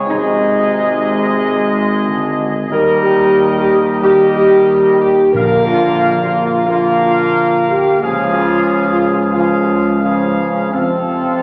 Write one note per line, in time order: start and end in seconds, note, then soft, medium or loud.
0.07 2.67 G#1 medium
0.07 2.07 C3 medium
0.07 2.54 G#3 medium
0.07 2.02 D#4 loud
0.07 2.67 G#4 medium
0.07 2.70 D#5 medium
2.06 2.54 D3 medium
2.70 5.30 D#2 medium
2.70 4.00 D#3 medium
2.70 3.98 G3 medium
2.70 3.01 A#4 loud
2.70 3.98 A#4 medium
2.70 3.98 D#5 medium
3.03 3.54 G4 loud
3.58 3.78 G4 loud
3.79 3.89 G4 loud
4.00 5.30 D#3 medium
4.00 5.30 G3 medium
4.00 4.32 G4 loud
4.00 5.18 A#4 medium
4.00 5.18 D#5 medium
4.34 4.96 G4 loud
4.99 5.31 G4 loud
5.33 7.69 A#1 medium
5.33 6.30 A#2 medium
5.33 6.65 D3 medium
5.33 6.68 A#3 medium
5.33 5.65 A#4 loud
5.33 6.64 A#4 medium
5.33 6.64 F5 medium
5.67 6.19 F4 loud
6.23 6.44 F4 loud
6.45 6.66 F4 loud
6.67 7.98 D3 medium
6.67 7.98 A#3 medium
6.67 6.98 F4 loud
6.67 7.97 A#4 medium
6.67 7.96 F5 medium
7.01 7.63 F4 loud
7.69 8.01 G4 loud
8.00 10.69 C#2 medium
8.00 9.32 C#3 medium
8.00 9.31 F3 medium
8.00 8.33 G#4 medium
8.00 9.31 G#4 medium
8.00 9.31 F5 medium
8.33 8.85 F4 loud
8.89 9.09 F4 medium
9.10 9.21 F4 medium
9.32 9.63 F4 medium
9.32 9.99 G#4 medium
9.32 9.99 F5 medium
9.36 10.00 C#3 medium
9.36 10.00 F3 medium
9.64 9.98 F4 medium
10.01 10.69 C#3 medium
10.01 10.69 F3 medium
10.01 10.24 C#4 medium
10.01 10.69 G#4 medium
10.01 10.69 F5 medium
10.25 10.36 G#3 medium
10.49 10.71 C#4 medium
10.70 11.43 F2 medium
10.70 11.43 C4 medium
10.70 11.43 A4 medium
10.70 11.43 F5 medium
10.74 11.43 C3 medium
10.74 11.43 F3 medium